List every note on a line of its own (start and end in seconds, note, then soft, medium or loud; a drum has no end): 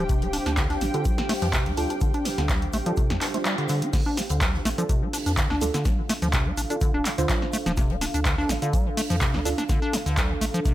0.00 0.39 D1 medium
0.00 3.89 D4 medium
0.00 3.89 G4 medium
0.00 3.93 G4 medium
0.00 3.93 C5 medium
0.00 3.93 F5 medium
0.00 3.92 G5 medium
0.00 3.96 G5 medium
0.09 0.24 C3 medium
0.09 kick loud
0.09 closed hi-hat medium
0.09 shaker medium
0.22 0.28 A3 medium
0.22 closed hi-hat soft
0.33 0.38 D4 medium
0.33 open hi-hat loud
0.33 shaker medium
0.46 0.75 D2 loud
0.46 0.52 D4 medium
0.46 snare medium
0.46 closed hi-hat medium
0.46 closed hi-hat soft
0.57 0.68 D3 medium
0.57 kick loud
0.57 snare loud
0.57 clap loud
0.57 closed hi-hat medium
0.57 shaker medium
0.70 0.83 D4 loud
0.70 snare soft
0.70 closed hi-hat soft
0.81 0.90 A1 loud
0.81 0.86 D3 loud
0.81 snare soft
0.81 open hi-hat medium
0.81 shaker medium
0.94 1.07 D3 medium
0.94 1.01 D4 medium
0.94 1.01 F4 medium
0.94 1.01 A4 medium
0.94 closed hi-hat medium
1.05 1.20 G3 medium
1.05 kick loud
1.05 closed hi-hat medium
1.05 shaker medium
1.18 1.22 D3 medium
1.18 snare medium
1.18 closed hi-hat soft
1.29 1.34 A3 loud
1.29 snare medium
1.29 open hi-hat medium
1.29 open hi-hat loud
1.42 1.57 F2 loud
1.42 1.48 F3 loud
1.42 snare medium
1.42 closed hi-hat medium
1.53 1.68 C3 medium
1.53 kick loud
1.53 snare loud
1.53 clap loud
1.53 closed hi-hat medium
1.53 shaker medium
1.66 1.73 D2 medium
1.66 1.72 A3 medium
1.66 closed hi-hat soft
1.77 1.86 D2 medium
1.77 1.85 D4 medium
1.77 1.82 D4 medium
1.77 1.85 F4 medium
1.77 1.85 A4 medium
1.77 open hi-hat medium
1.77 shaker medium
1.90 1.96 D4 medium
1.90 closed hi-hat medium
2.01 2.12 D3 medium
2.01 kick loud
2.01 closed hi-hat medium
2.01 shaker medium
2.14 2.27 D4 loud
2.14 closed hi-hat soft
2.25 2.30 D3 loud
2.25 snare loud
2.25 open hi-hat loud
2.25 shaker medium
2.38 2.67 D2 loud
2.38 2.51 D3 medium
2.38 snare medium
2.38 snare soft
2.38 closed hi-hat medium
2.49 2.64 G3 medium
2.49 kick loud
2.49 snare loud
2.49 clap loud
2.49 closed hi-hat medium
2.49 shaker medium
2.62 2.66 D3 medium
2.62 closed hi-hat soft
2.73 2.82 A1 loud
2.73 2.78 A3 loud
2.73 open hi-hat medium
2.73 shaker medium
2.86 2.92 F3 loud
2.86 2.93 D4 medium
2.86 2.93 F4 medium
2.86 2.93 A4 medium
2.86 closed hi-hat medium
2.97 3.12 C3 medium
2.97 kick loud
2.97 closed hi-hat medium
2.97 shaker medium
3.10 3.17 F2 loud
3.10 3.16 A3 medium
3.10 snare medium
3.10 closed hi-hat soft
3.21 3.28 D4 medium
3.21 snare loud
3.21 clap medium
3.21 open hi-hat loud
3.21 shaker medium
3.34 3.38 A3 medium
3.34 3.92 D4 medium
3.34 3.92 F4 medium
3.34 3.92 C5 medium
3.34 snare soft
3.34 closed hi-hat medium
3.45 3.56 G3 medium
3.45 clap loud
3.45 closed hi-hat medium
3.45 shaker medium
3.58 3.67 D3 medium
3.58 closed hi-hat soft
3.69 3.84 D3 loud
3.69 open hi-hat medium
3.69 shaker medium
3.82 3.91 F4 medium
3.82 closed hi-hat medium
3.93 4.04 D3 medium
3.93 10.74 D4 medium
3.93 10.74 A4 medium
3.93 10.74 F5 medium
3.93 kick loud
3.93 snare medium
3.93 closed hi-hat medium
3.93 crash loud
3.93 cabasa soft
3.93 shaker medium
4.06 4.19 D4 loud
4.06 closed hi-hat soft
4.17 4.22 D3 loud
4.17 snare medium
4.17 open hi-hat loud
4.17 cabasa medium
4.17 shaker medium
4.29 4.59 D2 loud
4.29 4.43 D3 medium
4.29 closed hi-hat soft
4.29 closed hi-hat medium
4.29 cabasa soft
4.41 4.56 G3 medium
4.41 kick loud
4.41 snare loud
4.41 clap loud
4.41 closed hi-hat medium
4.41 cabasa soft
4.41 shaker medium
4.54 4.58 D3 medium
4.54 snare soft
4.65 4.74 A1 loud
4.65 4.70 A3 loud
4.65 snare medium
4.65 open hi-hat loud
4.65 cabasa medium
4.65 shaker medium
4.78 4.84 F3 loud
4.78 4.85 D4 medium
4.78 4.85 F4 medium
4.78 4.85 A4 medium
4.78 closed hi-hat medium
4.78 cabasa soft
4.89 5.04 C3 medium
4.89 kick loud
4.89 closed hi-hat medium
4.89 cabasa soft
4.89 shaker medium
5.02 5.08 A3 medium
5.13 5.18 D4 medium
5.13 open hi-hat medium
5.13 open hi-hat loud
5.13 cabasa medium
5.26 5.41 F2 medium
5.26 5.32 D4 medium
5.26 snare soft
5.26 closed hi-hat medium
5.26 cabasa soft
5.37 5.48 D3 medium
5.37 kick loud
5.37 snare loud
5.37 clap loud
5.37 closed hi-hat medium
5.37 cabasa soft
5.37 shaker loud
5.50 5.57 D2 medium
5.50 5.63 D4 loud
5.50 snare medium
5.61 5.70 D2 medium
5.61 5.66 D3 loud
5.61 5.69 D4 medium
5.61 5.69 F4 medium
5.61 5.69 A4 loud
5.61 open hi-hat medium
5.61 cabasa medium
5.61 shaker medium
5.74 5.87 D3 medium
5.74 snare medium
5.74 closed hi-hat medium
5.74 cabasa soft
5.85 6.00 G3 medium
5.85 kick loud
5.85 snare medium
5.85 closed hi-hat medium
5.85 cabasa soft
5.85 shaker medium
5.98 6.02 D3 medium
6.09 6.14 A3 loud
6.09 snare medium
6.09 open hi-hat loud
6.09 cabasa medium
6.09 shaker medium
6.22 6.51 D2 loud
6.22 6.28 F3 loud
6.22 snare soft
6.22 closed hi-hat medium
6.22 cabasa soft
6.33 6.48 C3 medium
6.33 kick loud
6.33 snare loud
6.33 clap loud
6.33 closed hi-hat medium
6.33 cabasa soft
6.33 shaker medium
6.46 6.52 A3 medium
6.57 6.66 A1 loud
6.57 6.62 D4 medium
6.57 open hi-hat loud
6.57 cabasa medium
6.57 shaker medium
6.70 6.77 D4 medium
6.70 6.76 D4 medium
6.70 6.77 F4 medium
6.70 6.77 A4 medium
6.70 closed hi-hat medium
6.70 cabasa soft
6.81 6.92 D3 medium
6.81 kick loud
6.81 closed hi-hat medium
6.81 cabasa soft
6.81 shaker medium
6.94 7.01 D1 medium
6.94 7.07 D4 loud
7.05 7.10 D3 loud
7.05 clap medium
7.05 open hi-hat loud
7.05 cabasa medium
7.05 shaker medium
7.18 7.25 D2 medium
7.18 7.31 D3 medium
7.18 8.59 D4 medium
7.18 8.59 F4 medium
7.18 8.59 C5 medium
7.18 snare soft
7.18 closed hi-hat medium
7.18 cabasa soft
7.29 7.44 G3 medium
7.29 kick loud
7.29 snare loud
7.29 clap loud
7.29 closed hi-hat medium
7.29 cabasa soft
7.29 shaker loud
7.42 7.46 D3 medium
7.42 snare medium
7.53 7.58 A3 loud
7.53 open hi-hat medium
7.53 cabasa medium
7.53 shaker medium
7.66 8.07 D1 medium
7.66 7.72 F3 loud
7.66 snare medium
7.66 closed hi-hat medium
7.66 cabasa soft
7.77 7.92 C3 medium
7.77 kick loud
7.77 snare medium
7.77 closed hi-hat medium
7.77 cabasa soft
7.77 shaker medium
7.90 7.96 A3 medium
7.90 closed hi-hat soft
8.01 8.06 D4 medium
8.01 snare medium
8.01 open hi-hat loud
8.01 cabasa medium
8.01 shaker medium
8.14 8.43 D2 loud
8.14 8.20 D4 medium
8.14 closed hi-hat soft
8.14 closed hi-hat medium
8.14 cabasa soft
8.25 8.36 D3 medium
8.25 kick loud
8.25 snare loud
8.25 clap loud
8.25 closed hi-hat medium
8.25 cabasa soft
8.25 shaker loud
8.38 8.51 D4 loud
8.38 snare soft
8.49 8.58 A1 loud
8.49 8.54 D3 loud
8.49 snare medium
8.49 open hi-hat loud
8.49 cabasa medium
8.49 shaker medium
8.62 8.75 D3 medium
8.62 8.69 D4 medium
8.62 8.69 F4 medium
8.62 8.69 A4 medium
8.62 closed hi-hat medium
8.62 cabasa soft
8.73 8.88 G3 medium
8.73 kick loud
8.73 closed hi-hat medium
8.73 cabasa soft
8.73 shaker medium
8.86 8.90 D3 medium
8.97 9.02 A3 loud
8.97 open hi-hat loud
8.97 open hi-hat medium
8.97 cabasa medium
9.10 9.25 F2 loud
9.10 9.16 F3 loud
9.10 snare soft
9.10 closed hi-hat medium
9.10 cabasa soft
9.21 9.36 C3 medium
9.21 kick loud
9.21 snare loud
9.21 clap loud
9.21 closed hi-hat medium
9.21 cabasa soft
9.21 shaker medium
9.34 9.41 D2 medium
9.34 9.40 A3 medium
9.34 snare medium
9.45 9.54 D2 medium
9.45 9.50 D4 medium
9.45 9.53 D4 medium
9.45 9.53 F4 medium
9.45 9.53 A4 loud
9.45 open hi-hat loud
9.45 cabasa medium
9.45 shaker medium
9.58 9.64 D4 medium
9.58 snare medium
9.58 closed hi-hat medium
9.58 cabasa soft
9.69 9.80 D3 medium
9.69 kick loud
9.69 snare medium
9.69 closed hi-hat medium
9.69 cabasa soft
9.69 shaker medium
9.82 9.95 D4 loud
9.93 9.98 D3 loud
9.93 snare medium
9.93 open hi-hat loud
9.93 cabasa medium
9.93 shaker medium
10.06 10.35 D2 loud
10.06 10.19 D3 medium
10.06 snare soft
10.06 closed hi-hat medium
10.06 cabasa soft
10.17 10.32 G3 medium
10.17 kick loud
10.17 snare loud
10.17 clap loud
10.17 closed hi-hat medium
10.17 cabasa soft
10.17 shaker medium
10.30 10.34 D3 medium
10.41 10.50 A1 loud
10.41 10.46 A3 loud
10.41 open hi-hat loud
10.41 cabasa medium
10.41 shaker medium
10.54 10.60 F3 loud
10.54 closed hi-hat medium
10.54 cabasa soft
10.65 10.74 C3 medium
10.65 kick loud
10.65 closed hi-hat medium
10.65 cabasa soft
10.65 shaker medium